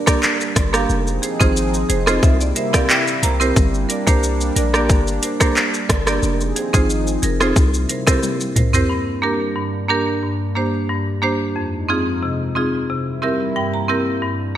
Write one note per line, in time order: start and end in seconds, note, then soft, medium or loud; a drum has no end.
0.00 0.86 G3 medium
0.00 0.86 A#3 medium
0.00 0.87 D4 loud
0.06 0.19 A#3 medium
0.06 0.20 D4 medium
0.06 0.20 G4 medium
0.06 0.20 A#4 medium
0.06 0.20 D5 medium
0.06 kick loud
0.06 cross-stick loud
0.06 shaker medium
0.23 clap loud
0.23 shaker medium
0.41 shaker medium
0.55 0.86 G1 medium
0.55 0.63 A#4 medium
0.55 0.64 D5 loud
0.55 kick loud
0.55 cross-stick medium
0.55 closed hi-hat medium
0.55 shaker medium
0.73 0.86 A#3 medium
0.73 0.86 D4 medium
0.73 0.86 G4 medium
0.73 0.87 A#4 medium
0.73 0.87 F5 medium
0.73 cross-stick loud
0.73 shaker medium
0.89 1.20 F1 loud
0.89 2.22 F3 medium
0.89 2.22 C4 medium
0.89 2.22 D#4 medium
0.89 2.22 G#4 medium
0.89 shaker medium
1.07 shaker medium
1.22 1.30 G#4 medium
1.22 1.30 C5 loud
1.22 closed hi-hat medium
1.22 shaker medium
1.40 1.85 G#1 medium
1.40 1.53 C4 medium
1.40 1.53 D#4 medium
1.40 1.53 F4 medium
1.40 1.53 G#4 medium
1.40 1.53 C5 medium
1.40 kick loud
1.40 shaker medium
1.57 shaker medium
1.74 shaker medium
1.89 2.20 F1 medium
1.89 1.96 G#4 medium
1.89 1.97 C5 medium
1.89 closed hi-hat medium
1.89 shaker medium
2.07 2.19 C4 medium
2.07 2.20 D#4 medium
2.07 2.20 F4 medium
2.07 2.20 G#4 medium
2.07 2.20 C5 medium
2.07 2.22 D#5 medium
2.07 cross-stick loud
2.07 shaker medium
2.23 2.53 C2 loud
2.23 3.55 C3 medium
2.23 6.19 G3 medium
2.23 6.19 A#3 medium
2.23 3.55 E4 medium
2.23 2.39 E5 medium
2.23 kick loud
2.23 shaker medium
2.41 2.55 D5 medium
2.41 shaker medium
2.55 2.63 A#4 medium
2.55 2.64 C5 loud
2.55 2.73 E5 medium
2.55 closed hi-hat medium
2.55 shaker medium
2.73 2.86 C4 medium
2.73 2.86 E4 medium
2.73 2.86 G4 medium
2.73 2.87 A#4 medium
2.73 2.87 D5 medium
2.73 2.88 F5 medium
2.73 kick loud
2.73 cross-stick loud
2.73 shaker medium
2.89 3.21 G5 medium
2.89 clap loud
2.89 shaker medium
3.07 shaker medium
3.22 3.53 C2 medium
3.22 3.30 A#4 medium
3.22 3.30 C5 loud
3.22 3.54 A#5 medium
3.22 closed hi-hat medium
3.22 shaker medium
3.40 3.53 C4 medium
3.40 3.53 E4 medium
3.40 3.53 G4 medium
3.40 3.53 A#4 medium
3.40 3.54 C5 medium
3.40 shaker medium
3.56 3.86 G1 loud
3.56 6.20 D4 medium
3.56 kick loud
3.56 shaker medium
3.74 shaker medium
3.89 3.96 A#4 medium
3.89 3.97 D5 loud
3.89 closed hi-hat medium
3.89 shaker medium
4.07 4.51 C2 loud
4.07 4.20 A#3 medium
4.07 4.20 D4 medium
4.07 4.20 G4 medium
4.07 4.20 A#4 medium
4.07 4.20 C5 medium
4.07 kick loud
4.07 shaker medium
4.23 shaker medium
4.41 shaker medium
4.56 4.91 A#1 medium
4.56 4.63 A#4 medium
4.56 4.64 D5 loud
4.56 closed hi-hat medium
4.56 shaker medium
4.74 4.86 A#3 medium
4.74 4.87 D4 medium
4.74 4.87 G4 medium
4.74 4.87 A#4 medium
4.74 4.87 D5 medium
4.74 cross-stick medium
4.74 shaker medium
4.89 5.20 G1 loud
4.89 kick loud
4.89 shaker medium
5.07 shaker medium
5.23 5.30 A#4 medium
5.23 5.31 C5 medium
5.23 closed hi-hat medium
5.23 shaker medium
5.40 5.53 A#3 medium
5.40 5.53 D4 medium
5.40 5.53 G4 medium
5.40 5.53 A#4 medium
5.40 5.54 C5 medium
5.40 kick loud
5.40 cross-stick medium
5.40 shaker medium
5.56 clap loud
5.56 shaker medium
5.74 shaker medium
5.89 6.19 G1 loud
5.89 5.96 A#4 loud
5.89 5.97 D5 loud
5.89 kick loud
5.89 cross-stick loud
5.89 closed hi-hat medium
5.89 shaker medium
6.07 6.20 A#3 medium
6.07 6.20 D4 medium
6.07 6.20 G4 medium
6.07 6.20 A#4 medium
6.07 6.20 D5 medium
6.07 cross-stick loud
6.07 shaker medium
6.23 6.53 F1 loud
6.23 7.55 F3 medium
6.23 7.55 C4 medium
6.23 7.55 D#4 medium
6.23 7.55 G#4 medium
6.23 shaker medium
6.41 shaker medium
6.56 6.63 G#4 medium
6.56 6.64 C5 loud
6.56 closed hi-hat medium
6.56 shaker medium
6.73 7.18 G#1 medium
6.73 6.86 C4 medium
6.73 6.86 D#4 medium
6.73 6.87 F4 medium
6.73 6.87 G#4 medium
6.73 6.87 C5 medium
6.73 kick loud
6.73 shaker medium
6.90 shaker medium
7.07 shaker medium
7.22 7.53 F1 loud
7.22 7.30 G#4 loud
7.22 7.30 A#4 loud
7.22 closed hi-hat medium
7.22 shaker medium
7.40 7.53 C4 medium
7.40 7.53 D#4 medium
7.40 7.53 F4 medium
7.40 7.54 G#4 medium
7.40 7.54 C5 medium
7.40 cross-stick loud
7.40 shaker medium
7.56 7.86 C2 loud
7.56 8.88 C3 medium
7.56 8.88 G3 medium
7.56 8.88 A#3 medium
7.56 8.88 E4 medium
7.56 kick loud
7.56 shaker medium
7.74 shaker medium
7.89 7.96 A#4 medium
7.89 7.97 C5 loud
7.89 closed hi-hat medium
7.89 shaker medium
8.07 8.20 C4 medium
8.07 8.20 E4 medium
8.07 8.20 G4 medium
8.07 8.20 A#4 medium
8.07 8.20 C5 medium
8.07 kick loud
8.07 cross-stick medium
8.07 shaker medium
8.23 high tom medium
8.23 shaker medium
8.41 shaker medium
8.56 8.86 C2 loud
8.56 8.63 A#4 medium
8.56 8.64 C5 loud
8.56 closed hi-hat medium
8.56 mid tom loud
8.56 shaker medium
8.73 8.86 C4 medium
8.73 8.87 E4 medium
8.73 8.87 G4 medium
8.73 8.87 A#4 medium
8.73 8.87 C5 medium
8.73 floor tom loud
8.73 shaker medium
8.89 9.40 G2 medium
8.89 11.54 G2 medium
8.89 11.54 G3 medium
8.89 11.54 A#3 medium
8.89 11.54 D4 medium
9.22 9.37 A#3 medium
9.22 9.37 D4 medium
9.22 9.37 G4 medium
9.22 9.37 A#4 medium
9.56 10.07 G2 medium
9.89 10.03 A#3 medium
9.89 10.04 D4 medium
9.89 10.04 G4 medium
9.89 10.04 A#4 medium
10.23 10.73 G2 medium
10.55 10.70 A#3 medium
10.55 10.70 D4 medium
10.55 10.71 G4 medium
10.55 10.71 C5 medium
10.89 11.40 G2 medium
11.22 11.37 A#3 medium
11.22 11.37 D4 medium
11.22 11.37 G4 medium
11.22 11.37 C5 medium
11.56 12.06 F2 medium
11.56 12.88 F2 medium
11.56 12.88 F3 medium
11.56 12.88 G#3 medium
11.56 12.88 D#4 medium
11.89 12.03 C4 medium
11.89 12.03 D#4 medium
11.89 12.04 F4 medium
11.89 12.04 G#4 medium
12.23 12.73 C3 medium
12.55 12.70 C4 medium
12.55 12.70 D#4 medium
12.55 12.70 F4 medium
12.55 12.71 G#4 medium
12.90 13.40 C3 medium
12.90 14.22 C3 medium
12.90 14.21 G3 medium
12.90 14.57 A#3 medium
12.90 14.22 E4 medium
13.22 13.37 C4 medium
13.22 13.37 E4 medium
13.22 13.37 G4 medium
13.22 13.37 A#4 medium
13.22 13.54 E5 medium
13.56 14.06 G2 medium
13.56 13.73 G5 medium
13.74 14.19 A#5 medium
13.88 14.03 C4 medium
13.88 14.03 E4 medium
13.88 14.04 G4 medium
13.88 14.04 A#4 medium
14.23 14.57 G2 medium
14.23 14.57 G3 medium
14.23 14.57 D4 medium